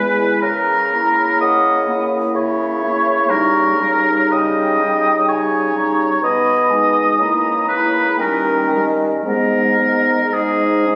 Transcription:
0.00 0.31 E2 soft
0.00 0.42 G#3 soft
0.00 0.42 E4 soft
0.00 0.41 B4 medium
0.00 0.42 G#5 medium
0.42 1.30 C#3 medium
0.42 1.39 A#4 medium
0.42 1.40 A#5 medium
0.92 1.87 A#3 soft
0.92 1.87 E4 soft
1.41 2.24 C#3 soft
1.41 2.06 D#5 medium
1.41 2.07 F#5 medium
1.89 2.80 A#3 soft
1.89 2.79 E4 soft
2.35 3.17 C#3 soft
2.35 3.31 C#5 medium
2.35 3.31 E5 soft
2.81 3.28 A#3 soft
2.81 3.28 E4 soft
3.28 4.19 C#3 medium
3.28 3.77 G3 soft
3.28 3.78 D#4 soft
3.28 4.33 A#4 medium
3.28 3.82 C#6 medium
3.78 4.78 G3 soft
3.78 4.79 D#4 soft
3.78 4.35 A#5 soft
4.31 5.17 C#3 medium
4.31 5.28 D#5 medium
4.31 5.32 G5 soft
4.81 5.73 G3 soft
4.81 5.74 D#4 soft
5.28 6.11 C#3 soft
5.28 6.21 C#5 medium
5.28 5.78 G#5 soft
5.75 6.21 G3 soft
5.75 6.22 D#4 soft
5.75 6.22 A#5 soft
6.22 7.07 B2 soft
6.22 7.66 D#5 medium
6.22 6.72 B5 medium
6.69 7.17 G#3 soft
6.69 7.18 D#4 soft
6.69 7.22 G#5 soft
7.19 8.07 C#3 soft
7.19 7.68 A#3 soft
7.19 7.68 E4 soft
7.19 8.20 A#5 soft
7.68 8.18 A#3 soft
7.68 8.18 E4 soft
7.68 8.22 B4 medium
8.18 9.13 D#3 soft
8.18 8.71 G3 soft
8.18 8.70 C#4 soft
8.18 8.95 A#4 soft
8.18 8.70 G5 soft
8.71 9.24 G3 soft
8.71 9.24 C#4 soft
8.71 9.24 D#5 soft
9.24 10.20 G#2 soft
9.24 9.78 G#3 soft
9.24 9.78 B3 soft
9.24 10.35 A#4 medium
9.24 10.96 D#5 soft
9.78 10.85 G#3 soft
9.78 10.21 B3 soft
10.31 10.96 G#2 soft
10.31 10.88 D#4 soft
10.31 10.96 G#4 soft
10.86 10.96 G#3 soft
10.86 10.96 C#4 soft

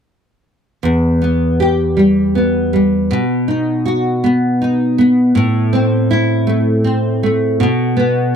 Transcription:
0.83 3.11 E2 soft
1.22 2.35 B3 soft
1.60 3.19 G4 soft
1.97 2.72 G3 soft
2.35 3.48 B3 soft
2.73 3.19 G3 soft
3.11 5.35 B2 soft
3.48 4.60 D#4 soft
3.86 5.43 F#4 soft
4.24 4.97 B3 soft
4.62 5.44 D#4 soft
4.98 5.44 B3 soft
5.35 7.60 A2 soft
5.73 6.83 C4 soft
6.11 7.68 E4 soft
6.47 7.22 A3 soft
6.84 7.67 C4 soft
7.23 7.68 A3 soft
7.60 8.36 B2 medium
7.97 8.36 B3 soft

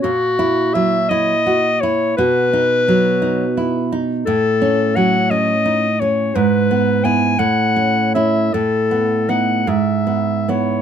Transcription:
0.02 2.14 A#2 medium
0.02 0.76 F#4 medium
0.39 0.96 E4 medium
0.74 1.32 F#3 medium
0.74 1.11 E5 loud
1.09 1.68 E4 medium
1.09 1.82 D#5 medium
1.46 1.82 F#4 soft
1.81 2.18 E4 medium
1.81 2.16 C#5 medium
2.17 4.24 B2 medium
2.17 3.89 B4 loud
2.53 3.08 D#4 medium
2.88 3.44 F#3 medium
3.22 3.79 D#4 medium
3.57 3.93 E4 medium
3.92 4.27 D#4 medium
4.26 6.31 A2 medium
4.26 4.97 A4 medium
4.62 5.17 C#4 medium
4.96 5.51 F#3 medium
4.96 5.32 F#5 medium
5.30 5.86 C#4 medium
5.30 6.02 D#5 medium
5.66 6.01 D#4 soft
6.00 6.36 C#4 medium
6.00 6.37 C#5 medium
6.35 7.36 G#2 medium
6.35 7.06 B4 medium
6.71 7.03 B3 medium
7.05 7.36 B3 soft
7.05 7.36 E4 soft
7.05 7.41 G#5 medium
7.39 8.49 A2 medium
7.39 8.14 F#5 medium
7.76 8.14 C#4 medium
8.15 8.49 C#4 soft
8.15 8.50 E4 soft
8.15 8.55 E5 medium
8.53 9.65 A2 medium
8.53 9.31 A4 medium
8.91 9.28 B3 soft
9.29 9.63 B3 soft
9.29 9.64 D#4 soft
9.29 9.70 F#5 medium
9.67 10.82 G#2 medium
9.67 10.51 E5 medium
10.07 10.47 B3 soft
10.48 10.82 B3 soft
10.48 10.82 E4 soft
10.48 10.82 C#5 medium

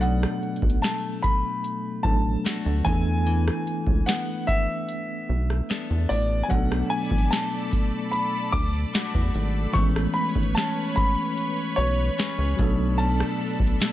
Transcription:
0.00 0.26 B1 loud
0.00 2.94 B2 medium
0.00 1.99 F#3 medium
0.00 2.00 A3 medium
0.00 2.01 B3 medium
0.00 2.02 D4 medium
0.00 2.02 A4 medium
0.00 0.86 B4 medium
0.00 0.79 F#5 medium
0.00 closed hi-hat medium
0.23 cross-stick loud
0.43 closed hi-hat soft
0.56 closed hi-hat medium
0.62 0.79 B1 medium
0.62 kick loud
0.70 closed hi-hat medium
0.82 2.45 A3 medium
0.82 1.24 A5 medium
0.82 snare loud
0.82 closed hi-hat medium
1.22 2.07 B5 loud
1.22 kick loud
1.22 closed hi-hat medium
1.64 closed hi-hat medium
2.03 2.37 A1 loud
2.03 2.85 F#3 medium
2.03 2.83 A3 soft
2.03 2.85 B3 medium
2.03 2.87 D4 soft
2.03 2.87 A4 medium
2.03 2.87 A5 loud
2.03 kick loud
2.45 4.07 A3 medium
2.45 3.30 D4 medium
2.45 2.95 F#4 medium
2.45 snare loud
2.45 closed hi-hat medium
2.66 2.82 D2 loud
2.84 3.50 E2 loud
2.84 6.05 E3 medium
2.84 3.25 E3 medium
2.84 6.06 A3 medium
2.84 6.06 B3 medium
2.84 4.11 G#5 loud
2.84 kick loud
2.84 closed hi-hat medium
2.88 6.07 D4 medium
2.88 6.08 A4 medium
3.27 6.51 E3 medium
3.27 closed hi-hat medium
3.48 cross-stick loud
3.67 closed hi-hat medium
3.87 4.03 C#2 medium
3.87 kick loud
4.06 5.69 B3 medium
4.06 4.49 F#5 medium
4.06 snare loud
4.06 closed hi-hat medium
4.47 6.15 E5 loud
4.47 kick loud
4.47 closed hi-hat medium
4.89 closed hi-hat medium
5.29 5.61 B1 medium
5.50 cross-stick medium
5.70 7.32 B3 medium
5.70 8.94 D4 medium
5.70 8.95 A4 medium
5.70 snare loud
5.70 closed hi-hat medium
5.90 6.06 E2 loud
6.09 6.42 A1 loud
6.09 6.44 D5 loud
6.09 open hi-hat medium
6.43 6.51 G#5 medium
6.48 6.83 B1 loud
6.48 9.75 B2 medium
6.48 9.70 F#3 medium
6.48 9.71 A3 medium
6.48 9.71 B3 medium
6.48 9.72 A4 medium
6.48 9.72 D5 medium
6.48 6.88 F#5 loud
6.48 13.92 B5 medium
6.48 kick loud
6.48 closed hi-hat medium
6.52 9.72 D4 medium
6.52 9.73 A4 medium
6.72 cross-stick loud
6.90 7.32 G#5 loud
6.90 closed hi-hat soft
7.05 closed hi-hat medium
7.11 7.27 A1 medium
7.11 kick loud
7.18 closed hi-hat medium
7.31 8.94 A3 medium
7.31 8.15 A5 loud
7.31 snare loud
7.31 closed hi-hat medium
7.73 kick loud
7.73 closed hi-hat medium
8.11 8.50 B5 loud
8.11 closed hi-hat medium
8.52 8.85 D2 medium
8.52 9.78 D6 loud
8.52 kick loud
8.94 9.75 A3 medium
8.94 9.84 D4 medium
8.94 9.84 F#4 medium
8.94 snare loud
8.94 closed hi-hat medium
9.14 9.31 E2 medium
9.14 kick medium
9.34 9.67 G#1 loud
9.34 closed hi-hat medium
9.73 10.07 A1 loud
9.73 12.54 E3 medium
9.73 12.54 A3 medium
9.73 13.02 A3 medium
9.73 12.55 B3 medium
9.73 12.56 B4 medium
9.73 12.56 C#5 medium
9.73 9.83 C#6 loud
9.73 kick loud
9.73 closed hi-hat medium
9.77 12.56 G#3 medium
9.77 12.56 C#4 medium
9.96 cross-stick loud
10.14 10.23 B5 loud
10.14 closed hi-hat soft
10.29 closed hi-hat medium
10.35 10.52 G#1 loud
10.35 kick loud
10.43 closed hi-hat medium
10.55 12.17 C#4 medium
10.55 10.97 A5 loud
10.55 snare loud
10.55 closed hi-hat medium
10.96 11.80 B5 loud
10.96 kick loud
10.96 closed hi-hat medium
11.38 closed hi-hat medium
11.76 12.10 B1 loud
11.76 13.02 C#5 loud
12.19 12.67 C#4 medium
12.19 12.67 G#4 medium
12.19 13.83 B4 medium
12.19 snare loud
12.19 closed hi-hat medium
12.38 12.55 C#2 loud
12.56 13.23 B1 loud
12.56 12.98 B2 medium
12.56 13.92 F#3 medium
12.56 13.92 A3 medium
12.56 13.92 B3 medium
12.56 13.92 D4 medium
12.56 13.92 A4 medium
12.56 kick loud
12.56 closed hi-hat medium
12.61 13.92 D4 medium
12.61 13.92 A4 medium
12.98 13.92 B2 medium
12.98 13.92 A5 loud
12.98 closed hi-hat medium
13.20 cross-stick loud
13.40 closed hi-hat soft
13.53 closed hi-hat medium
13.60 13.76 B1 medium
13.60 kick loud
13.67 closed hi-hat medium
13.80 13.92 A3 medium
13.80 snare loud
13.80 closed hi-hat medium

